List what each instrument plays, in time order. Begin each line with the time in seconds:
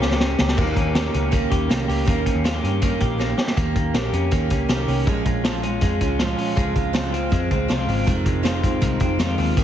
Already playing: clean electric guitar A#3 C#4
0.02 picked electric bass C#2, steel-string acoustic guitar A#3 C#4 G4, snare
0.11 snare
0.20 clean electric guitar C#4, snare
0.38 picked electric bass C#2, steel-string acoustic guitar A#3 C#4 G4, snare
0.48 snare
0.57 picked electric bass D#2, steel-string acoustic guitar D#3 A#3 C#4 G4, kick, crash
0.76 picked electric bass D#2, clean electric guitar C#4, kick, closed hi-hat
0.95 steel-string acoustic guitar D#3 A#3 C#4 G4, snare, closed hi-hat
1.13 picked electric bass C#2, clean electric guitar C#4, closed hi-hat
1.31 steel-string acoustic guitar D#3 A#3 C#4 G4, kick, closed hi-hat
1.50 picked electric bass D#2, clean electric guitar G4, kick, closed hi-hat
1.69 picked electric bass C2, steel-string acoustic guitar D#3 A#3 C#4 G4, snare, closed hi-hat
1.88 picked electric bass C#2, steel-string acoustic guitar A#3 C#4 G4, open hi-hat
2.05 picked electric bass D#2, steel-string acoustic guitar D#3 A#3 C#4 G4, kick, closed hi-hat
2.26 clean electric guitar C#4, kick, closed hi-hat
2.35 picked electric bass D#2
2.44 steel-string acoustic guitar D#3 A#3 C#4 G4, clean electric guitar F4, snare, closed hi-hat
2.53 clean electric guitar G4
2.63 picked electric bass G2, clean electric guitar C#4, closed hi-hat
2.81 steel-string acoustic guitar D#3 A#3 C#4 G4, kick, closed hi-hat
3.00 picked electric bass A#1, clean electric guitar G4, kick, closed hi-hat
3.18 steel-string acoustic guitar D#3 A#3 C#4 G4, snare
3.37 steel-string acoustic guitar A#3 C#4 G4, snare
3.47 snare
3.56 picked electric bass D#2, steel-string acoustic guitar D#3 A#3 C#4 G4, kick, closed hi-hat
3.76 picked electric bass D#2, clean electric guitar A#3, kick, closed hi-hat
3.94 picked electric bass A#1, steel-string acoustic guitar D#3 A#3 C#4 G4, snare, closed hi-hat
4.12 picked electric bass F2, steel-string acoustic guitar A#3 C#4 G4, closed hi-hat
4.31 picked electric bass D#2, steel-string acoustic guitar D#3 A#3 C#4 G4, kick, closed hi-hat
4.50 picked electric bass C#2, steel-string acoustic guitar A#3 C#4 G4, kick, closed hi-hat
4.68 picked electric bass C2, steel-string acoustic guitar D#3 A#3 C#4 G4, snare, closed hi-hat
4.87 picked electric bass C2, clean electric guitar C#4, open hi-hat
5.07 picked electric bass A#1, steel-string acoustic guitar A#2 F3 G#3 C#4 F4, kick, closed hi-hat
5.25 picked electric bass A#1, clean electric guitar G#3, kick, closed hi-hat
5.44 steel-string acoustic guitar A#2 F3 G#3 C#4 F4, snare, closed hi-hat
5.63 steel-string acoustic guitar G#3 C#4 F4, closed hi-hat
5.81 picked electric bass F2, steel-string acoustic guitar F3 G#3 C#4 F4, kick, closed hi-hat
6.01 picked electric bass C#2, steel-string acoustic guitar G#3 C#4 F4, kick, closed hi-hat
6.19 steel-string acoustic guitar A#2 F3 G#3 C#4 F4, snare, closed hi-hat
6.38 clean electric guitar C#4, open hi-hat
6.56 picked electric bass C#2, steel-string acoustic guitar C#3 F3 G#3 C4 F4, kick, closed hi-hat
6.75 picked electric bass C#2, clean electric guitar G#3, kick, closed hi-hat
6.93 steel-string acoustic guitar C#3 F3 G#3 C4 F4, snare, closed hi-hat
7.12 steel-string acoustic guitar G#3 C4 F4, closed hi-hat
7.29 picked electric bass F2, steel-string acoustic guitar F3 G#3 C4 F4, kick, closed hi-hat
7.51 picked electric bass C#2, steel-string acoustic guitar G#3 C4 F4, kick, closed hi-hat
7.68 picked electric bass C2, steel-string acoustic guitar C#3 F3 G#3 C4 F4, snare, closed hi-hat
7.87 picked electric bass G#1, clean electric guitar C4, open hi-hat
8.05 picked electric bass F1, steel-string acoustic guitar F2 C3 D#3 G#3 C4 F4, kick, closed hi-hat
8.26 picked electric bass F1, clean electric guitar G#3, kick, closed hi-hat
8.43 steel-string acoustic guitar F2 C3 D#3 G#3 C4 F4, snare, closed hi-hat
8.62 steel-string acoustic guitar D#3 G#3 C4 F4, kick, closed hi-hat
8.81 picked electric bass C2, steel-string acoustic guitar D#3 G#3 C4 F4, kick, closed hi-hat
9.00 picked electric bass F1, steel-string acoustic guitar D#3 G#3 C4 F4, kick, closed hi-hat
9.19 steel-string acoustic guitar F2 C3 D#3 G#3 C4 F4, picked electric bass F2, snare, closed hi-hat
9.38 picked electric bass D#2, clean electric guitar C4, open hi-hat
9.57 picked electric bass D#2, steel-string acoustic guitar D#3 A#3 C#4 G4, kick, closed hi-hat